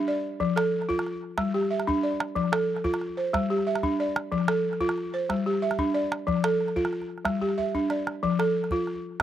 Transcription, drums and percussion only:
0.40 calabash thump
0.57 calabash click
0.82 calabash click
0.90 calabash thump
0.99 calabash click
1.06 calabash click
1.38 calabash thump, calabash click
1.80 calabash click
1.89 calabash thump
2.20 calabash click
2.36 calabash thump
2.53 calabash click
2.77 calabash click
2.85 calabash thump
2.94 calabash click
3.01 calabash click
3.34 calabash thump, calabash click
3.75 calabash click
3.83 calabash thump
4.16 calabash click
4.32 calabash thump
4.48 calabash click
4.73 calabash click
4.81 calabash thump
4.89 calabash click
4.98 calabash click
5.30 calabash thump, calabash click
5.71 calabash click
5.79 calabash thump
6.12 calabash click
6.28 calabash thump, calabash click
6.44 calabash click
6.61 calabash click
6.68 calabash click
6.77 calabash thump
6.85 calabash click
6.93 calabash click
7.02 calabash click
7.18 calabash click
7.25 calabash thump, calabash click
7.42 calabash thump
7.59 calabash thump
7.75 calabash thump
7.90 calabash click
8.07 calabash click
8.24 calabash thump
8.40 calabash click
8.64 calabash click
8.71 calabash thump
8.87 calabash click

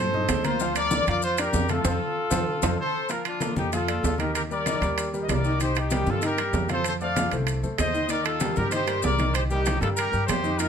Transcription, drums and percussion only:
0.14 high conga, low conga
0.29 high conga, high timbale, low timbale, maracas
0.44 high conga, high timbale, maracas
0.60 high conga, maracas
0.75 high conga, high timbale, maracas
0.91 high conga, maracas
1.07 high timbale, maracas
1.22 high conga, maracas
1.38 high conga, high timbale, maracas
1.53 high conga, low timbale, maracas
1.69 high conga, high timbale, maracas
1.84 high conga, high timbale, maracas
2.31 high conga, high timbale, maracas
2.62 high conga, high timbale, maracas
3.09 high conga, high timbale, maracas
3.25 high conga, high timbale, maracas
3.40 high conga, high timbale, low timbale, maracas
3.56 high conga, maracas
3.72 high conga, high timbale, maracas
3.88 high conga, high timbale, maracas
4.03 high conga, low timbale, maracas
4.18 high conga, high timbale, maracas
4.34 high conga, high timbale, maracas
4.51 high conga, maracas
4.66 high conga, high timbale, low timbale, maracas
4.82 high conga, high timbale, maracas
4.98 high conga, high timbale, maracas
5.13 high conga, maracas
5.29 high conga, high timbale, low timbale, maracas
5.44 high conga, maracas
5.60 high conga, high timbale, maracas
5.75 high conga, high timbale, maracas
5.90 high conga, high timbale, low timbale, maracas
6.06 high conga, maracas
6.22 high conga, high timbale, maracas
6.38 high conga, high timbale, maracas
6.53 high conga, low timbale, maracas
6.69 high conga, high timbale, maracas
6.84 high conga, high timbale, maracas
7.01 high conga, maracas
7.16 high conga, high timbale, low timbale, maracas
7.31 high conga, high timbale, maracas
7.47 high conga, high timbale, maracas
7.64 high conga, maracas
7.78 high conga, high timbale, low timbale, maracas
7.94 high conga, maracas
8.09 high conga, high timbale, maracas
8.24 high conga, high timbale, maracas
8.40 high conga, high timbale, low timbale, maracas
8.56 high conga, maracas
8.71 high conga, high timbale, maracas
8.87 high conga, high timbale, maracas
9.02 high conga, low timbale, maracas
9.18 high conga, high timbale, maracas
9.34 high conga, high timbale, maracas
9.50 high conga, maracas
9.66 high conga, high timbale, low timbale, maracas
9.82 high conga, high timbale, maracas
9.97 high conga, high timbale, maracas
10.13 high conga, maracas
10.28 high conga, high timbale, low timbale, maracas
10.44 high conga, maracas
10.59 high conga, high timbale, maracas

